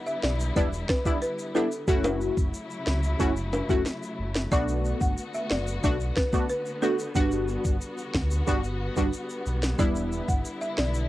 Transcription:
0.00 1.85 D3 medium
0.00 1.85 G3 medium
0.00 1.84 B3 medium
0.00 1.85 E4 medium
0.07 0.17 E5 medium
0.07 shaker soft
0.23 0.51 B1 medium
0.23 0.33 D5 medium
0.23 snare loud
0.40 shaker medium
0.56 0.84 E1 loud
0.56 0.69 G3 loud
0.56 0.69 B3 medium
0.56 0.69 D4 medium
0.56 0.69 E4 loud
0.56 0.66 D5 medium
0.56 kick loud
0.56 closed hi-hat medium
0.56 shaker medium
0.73 shaker medium
0.89 0.99 B4 medium
0.89 kick loud
0.89 snare loud
1.05 1.18 G3 medium
1.05 1.18 B3 medium
1.05 1.19 D4 medium
1.05 1.19 E4 medium
1.05 kick medium
1.05 shaker medium
1.22 1.32 B4 medium
1.22 closed hi-hat medium
1.22 shaker medium
1.39 shaker medium
1.55 1.68 G3 medium
1.55 1.68 B3 medium
1.55 1.68 D4 medium
1.55 1.68 E4 medium
1.55 1.65 A4 medium
1.55 shaker medium
1.72 shaker medium
1.88 2.30 F#1 loud
1.88 4.49 C#3 medium
1.88 4.49 F#3 medium
1.88 2.49 A3 medium
1.88 7.11 A3 medium
1.88 2.49 C#4 medium
1.88 4.49 E4 medium
1.88 2.49 E4 medium
1.88 2.49 F#4 loud
1.88 kick loud
1.88 closed hi-hat medium
1.88 shaker medium
2.04 high timbale medium
2.04 shaker medium
2.21 shaker medium
2.37 2.51 F#1 medium
2.37 kick medium
2.37 shaker medium
2.54 closed hi-hat medium
2.54 shaker medium
2.70 shaker soft
2.87 3.15 C#2 loud
2.87 snare loud
2.87 shaker medium
3.03 shaker medium
3.19 3.62 F#1 loud
3.19 3.33 A3 medium
3.19 3.33 C#4 medium
3.19 3.33 E4 medium
3.19 3.33 F#4 loud
3.19 kick medium
3.19 closed hi-hat medium
3.19 shaker medium
3.37 shaker medium
3.53 high timbale medium
3.53 shaker medium
3.69 3.83 F#1 medium
3.69 3.82 A3 medium
3.69 3.82 C#4 medium
3.69 3.82 E4 medium
3.69 3.82 F#4 medium
3.69 kick medium
3.69 shaker medium
3.86 snare medium
3.86 closed hi-hat medium
3.86 shaker medium
4.03 shaker medium
4.19 4.47 F#1 loud
4.35 snare loud
4.35 shaker medium
4.51 4.93 B1 loud
4.51 9.75 D3 medium
4.51 5.12 A3 loud
4.51 5.13 B3 medium
4.51 11.09 B3 medium
4.51 5.13 D4 medium
4.51 7.13 F#4 medium
4.51 5.13 F#4 loud
4.51 4.62 D5 loud
4.51 kick loud
4.51 closed hi-hat medium
4.51 shaker medium
4.68 shaker medium
4.85 shaker soft
5.01 5.15 G1 loud
5.01 5.11 F#5 medium
5.01 kick loud
5.01 shaker medium
5.18 closed hi-hat medium
5.18 shaker medium
5.34 5.44 E5 medium
5.34 shaker soft
5.51 5.79 F#1 loud
5.51 5.61 D5 medium
5.51 snare loud
5.67 shaker medium
5.83 6.11 B1 loud
5.83 5.96 A3 medium
5.83 5.96 B3 medium
5.83 5.97 D4 medium
5.83 5.97 F#4 loud
5.83 5.94 D5 medium
5.83 kick medium
5.83 closed hi-hat medium
5.83 shaker medium
6.00 shaker medium
6.17 6.27 B4 medium
6.17 kick medium
6.17 snare loud
6.33 6.46 A3 medium
6.33 6.46 B3 medium
6.33 6.46 D4 medium
6.33 6.46 F#4 medium
6.33 kick medium
6.33 shaker medium
6.49 6.60 B4 medium
6.49 closed hi-hat medium
6.49 shaker medium
6.66 shaker medium
6.82 6.95 A3 medium
6.82 6.95 B3 medium
6.82 6.95 D4 medium
6.82 6.96 F#4 medium
6.82 6.92 A4 medium
6.82 shaker medium
6.99 shaker medium
7.15 7.57 G1 loud
7.15 7.76 G3 medium
7.15 11.09 G3 medium
7.15 7.76 B3 medium
7.15 7.76 D4 medium
7.15 9.77 F#4 medium
7.15 7.76 F#4 loud
7.15 kick loud
7.15 closed hi-hat medium
7.15 shaker medium
7.32 shaker medium
7.48 shaker soft
7.65 7.79 G1 loud
7.65 kick loud
7.65 shaker medium
7.81 closed hi-hat medium
7.81 shaker medium
7.98 shaker medium
8.14 8.42 D2 medium
8.14 kick medium
8.14 snare loud
8.31 shaker medium
8.47 8.89 G1 loud
8.47 8.60 G3 medium
8.47 8.60 B3 medium
8.47 8.60 D4 medium
8.47 8.60 F#4 loud
8.47 kick medium
8.47 closed hi-hat medium
8.47 shaker medium
8.64 shaker medium
8.96 9.11 G1 medium
8.96 9.09 G3 medium
8.96 9.10 B3 medium
8.96 9.10 D4 medium
8.96 9.10 F#4 medium
8.96 kick medium
8.96 shaker medium
9.13 closed hi-hat medium
9.13 shaker medium
9.29 shaker medium
9.46 9.74 B1 medium
9.46 shaker medium
9.63 snare loud
9.63 shaker medium
9.78 10.21 E1 loud
9.78 11.09 D3 medium
9.78 10.39 G3 loud
9.78 10.40 B3 medium
9.78 10.40 D4 medium
9.78 11.09 E4 medium
9.78 10.40 E4 loud
9.78 9.89 D5 loud
9.78 kick loud
9.78 closed hi-hat medium
9.78 shaker medium
9.96 shaker medium
10.12 shaker medium
10.28 10.43 G1 loud
10.28 10.38 F#5 medium
10.28 kick loud
10.28 shaker medium
10.45 closed hi-hat medium
10.45 shaker medium
10.61 10.71 E5 medium
10.61 shaker soft
10.78 11.06 B1 medium
10.78 10.88 D5 medium
10.78 snare loud
10.94 shaker medium

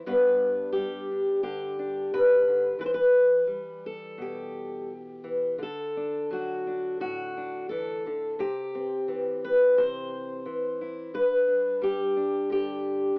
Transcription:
0.06 2.77 G2 medium
0.06 0.75 G3 soft
0.06 2.77 B3 soft
0.06 1.09 D4 soft
0.06 0.72 B4 medium
0.73 2.77 G3 medium
0.73 1.41 G4 medium
1.11 1.78 D4 soft
1.43 2.11 D3 medium
1.43 2.11 G4 medium
1.79 2.77 D4 soft
2.14 2.47 C3 medium
2.14 2.80 B4 medium
2.48 2.78 D3 medium
2.79 5.23 E3 medium
2.79 2.85 B4 medium
2.86 2.93 C5 medium
2.94 3.84 B4 medium
3.47 4.89 G3 soft
3.86 4.91 A4 medium
4.18 5.56 B2 medium
4.18 5.63 G4 medium
5.24 5.60 E3 soft
5.58 8.04 D3 medium
5.63 6.32 A4 medium
5.97 6.66 D4 soft
6.31 7.70 F#3 medium
6.31 7.00 F#4 medium
6.67 7.36 D4 soft
7.01 8.35 A2 medium
7.01 7.69 F#4 medium
7.37 8.36 D4 soft
7.69 8.06 E3 medium
7.69 8.39 A4 medium
8.06 8.40 D3 medium
8.39 9.09 C3 medium
8.39 10.12 G4 medium
8.75 11.10 C4 soft
9.08 10.44 E3 medium
9.44 9.78 B4 medium
9.77 10.46 C3 medium
9.77 11.14 C5 medium
10.46 11.14 E3 medium
10.81 11.11 E4 soft
11.14 13.19 G2 medium
11.14 11.83 B4 medium
11.48 12.15 D4 soft
11.81 13.19 G3 medium
11.81 12.51 G4 medium
12.17 13.19 D4 soft
12.50 13.15 D3 medium
12.50 13.17 G4 medium

